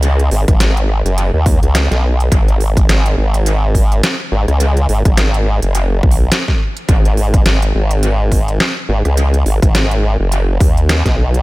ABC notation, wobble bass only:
X:1
M:4/4
L:1/16
Q:"Swing 16ths" 1/4=105
K:G#m
V:1 name="Wobble bass" clef=bass
C,,2 G,,, G,,,4 F,,,2 D,,2 C,,2 B,,,3 | G,,,4 G,,,2 G,,,6 z2 G,,, C,,- | C,,2 G,,, G,,,4 F,,,3 B,,,2 z4 | G,,,4 G,,,2 G,,,6 z2 G,,, C,,- |
C,,2 G,,, G,,,4 F,,,3 D,,3 B,,,3 |]